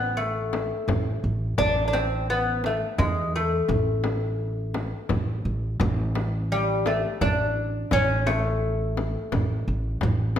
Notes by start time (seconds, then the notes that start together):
Already playing: A1 B3
0.17 A3, tombak ka
0.53 tombak tek, frame drum
0.88 A1, tombak dum, frame drum
1.24 A1, tombak ka
1.58 A1 D4, frame drum, tombak dum
1.88 D4
1.93 C4, tombak tek, frame drum
2.29 B3, tombak ka
2.64 A3, tombak tek, frame drum
2.98 E2 G#3, frame drum, tombak dum
3.34 A3, tombak ka
3.68 A1, frame drum, tombak dum
4.04 tombak tek, frame drum
4.39 tombak ka
4.74 tombak tek, frame drum
5.09 A1, frame drum, tombak dum
5.45 A1, tombak ka
5.80 A1, tombak dum, frame drum
6.15 tombak tek, frame drum
6.51 G3, tombak ka
6.86 A3, tombak tek, frame drum
7.21 A1 D4, frame drum, tombak dum
7.57 tombak ka
7.91 A1 C#4, frame drum, tombak dum
8.26 A3, tombak tek, frame drum
8.62 tombak ka
8.97 frame drum
9.32 A1, frame drum, tombak dum
9.68 A1, tombak ka
10.01 A1, frame drum, tombak dum
10.36 frame drum